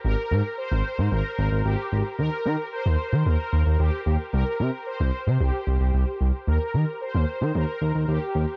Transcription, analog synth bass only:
X:1
M:4/4
L:1/16
Q:1/4=112
K:Eb
V:1 name="Analog synth bass" clef=bass
A,,, z A,, z2 A,,, z A,, A,,, z A,,, A,,, A,,, z A,,, z | E,, z E, z2 E,, z E, E,, z E,, E,, E,, z E,, z | C,, z C, z2 C,, z C, C,, z C,, C,, C,, z C,, z | E,, z E, z2 E,, z E, E,, z E,, E,, E,, z E,, z |]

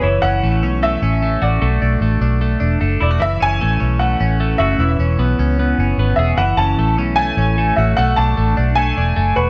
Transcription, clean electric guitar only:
X:1
M:4/4
L:1/16
Q:1/4=151
K:F#m
V:1 name="Clean electric guitar"
E,2 C2 A,2 C2 A,2 C2 A,2 F2 | A,2 D2 A,2 D2 A,2 D2 A,2 E F | E,2 C2 A,2 C2 A,2 C2 A,2 F2 | E,2 C2 B,2 C2 B,2 C2 B,2 G2 |
E,2 C2 A,2 C2 A,2 C2 A,2 F2 | A,2 D2 A,2 D2 A,2 D2 A,2 F2 |]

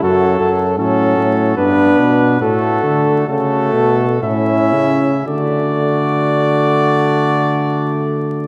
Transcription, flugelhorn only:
X:1
M:3/4
L:1/8
Q:1/4=64
K:D
V:1 name="Flugelhorn"
F A C2 D2 | F2 F2 E2 | F6 |]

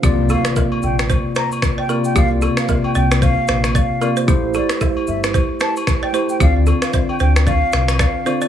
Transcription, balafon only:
X:1
M:4/4
L:1/16
Q:"Swing 16ths" 1/4=113
K:Cmix
V:1 name="Balafon"
G z A z B2 z2 c z c z2 d B z | G z A z B z d z c z c z d z B c | G z A z A2 z2 c z c z2 d c z | G z A z c z c z d z f z d z c d |]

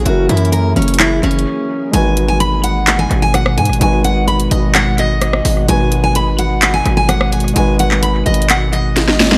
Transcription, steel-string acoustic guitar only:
X:1
M:4/4
L:1/16
Q:1/4=128
K:G#m
V:1 name="Steel-string acoustic guitar"
F2 E2 A2 C2 E2 C6 | g3 g b2 f3 g2 g f2 g2 | g2 f2 b2 d2 f2 d6 | g3 g b2 f3 g2 g f2 g2 |
g2 f2 b2 d2 f2 d6 |]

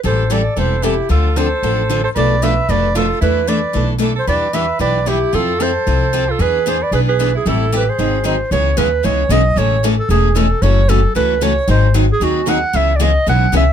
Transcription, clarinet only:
X:1
M:4/4
L:1/16
Q:"Swing" 1/4=227
K:Am
V:1 name="Clarinet"
c4 d4 c4 G4 | A4 c8- c2 c2 | d4 e4 d4 A4 | B4 d6 z4 c2 |
d4 e4 d4 G4 | A4 c8- c2 A2 | B4 c2 d2 B2 B4 ^G2 | A4 B2 c6 ^B4 |
[K:C#m] c4 B4 c4 d4 | c4 z2 A2 G4 A4 | c4 A4 B4 c4 | ^B4 z2 G2 F4 f4 |
e3 =d ^d4 f4 e4 |]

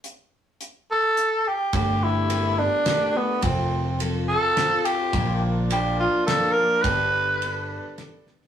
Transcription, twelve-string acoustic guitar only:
X:1
M:3/4
L:1/8
Q:1/4=106
K:Gmix
V:1 name="Twelve-string acoustic guitar"
z6 | [G,,D,A,B,DG]2 [A,B,DG] [A,B,DG] [A,B,DG] [A,B,DG] | [F,CFA]2 [F,CFA]2 [F,CFA]2 | [_B,,D,F,_B,D_B]2 [F,B,DB]2 [F,B,DB] [F,B,DB] |
[G,,D,G,B,DA]2 [G,B,DA]2 [G,B,DA] [G,B,DA] |]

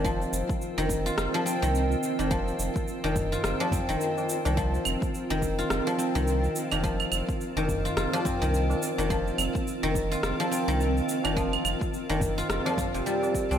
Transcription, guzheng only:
X:1
M:4/4
L:1/16
Q:"Swing 16ths" 1/4=106
K:Cm
V:1 name="Guzheng" clef=bass
F, z4 E, z F F F, C E,4 E, | F, z4 E, z F F F, C E,4 E, | F, z4 E, z F F F, C E,4 E, | F, z4 E, z F F F, C E,4 E, |
F, z4 E, z F F F, C E,4 E, | F, z4 E, z F F F, F C, G, z2 C |]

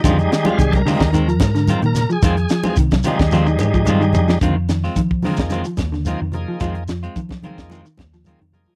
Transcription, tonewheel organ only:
X:1
M:4/4
L:1/16
Q:"Swing 16ths" 1/4=109
K:Fdor
V:1 name="Tonewheel organ"
z2 E F A [=AB]8 B2 _A | A2 A2 z12 | z6 [F,B,EA]2 z4 [F,B,EA]2 [F,B,EA]2- | [F,B,EA]2 z4 [F,B,EA]2 z4 [F,B,EA]2 [F,B,EA]2 |]
V:2 name="Tonewheel organ" clef=bass
[G,A,E]6 [G,A,E]2 z8 | z6 [G,A,E]8- [G,A,E]2 | z16 | z16 |]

